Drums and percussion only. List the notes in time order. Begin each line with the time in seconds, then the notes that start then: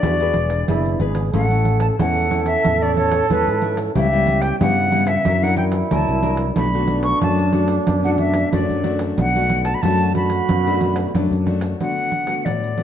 0.03 pandeiro
0.20 pandeiro
0.34 pandeiro
0.50 pandeiro
0.68 pandeiro
0.86 pandeiro
1.00 pandeiro
1.15 pandeiro
1.34 pandeiro
1.51 pandeiro
1.65 pandeiro
1.80 pandeiro
1.99 pandeiro
2.17 pandeiro
2.31 pandeiro
2.46 pandeiro
2.65 pandeiro
2.82 pandeiro
2.97 pandeiro
3.12 pandeiro
3.30 pandeiro
3.48 pandeiro
3.62 pandeiro
3.77 pandeiro
3.96 pandeiro
4.13 pandeiro
4.27 pandeiro
4.42 pandeiro
4.61 pandeiro
4.78 pandeiro
4.92 pandeiro
5.07 pandeiro
5.25 pandeiro
5.43 pandeiro
5.57 pandeiro
5.72 pandeiro
5.91 pandeiro
6.08 pandeiro
6.23 pandeiro
6.37 pandeiro
6.56 pandeiro
6.73 pandeiro
6.88 pandeiro
7.03 pandeiro
7.21 pandeiro
7.38 pandeiro
7.53 pandeiro
7.68 pandeiro
7.87 pandeiro
8.04 pandeiro
8.18 pandeiro
8.34 pandeiro
8.53 pandeiro
8.70 pandeiro
8.84 pandeiro
8.99 pandeiro
9.18 pandeiro
9.36 pandeiro
9.50 pandeiro
9.65 pandeiro
9.83 pandeiro
10.01 pandeiro
10.15 pandeiro
10.30 pandeiro
10.49 pandeiro
10.66 pandeiro
10.81 pandeiro
10.96 pandeiro
11.15 pandeiro
11.32 pandeiro
11.47 pandeiro
11.61 pandeiro
11.80 pandeiro
11.97 pandeiro
12.12 pandeiro
12.27 pandeiro
12.46 pandeiro
12.63 pandeiro
12.78 pandeiro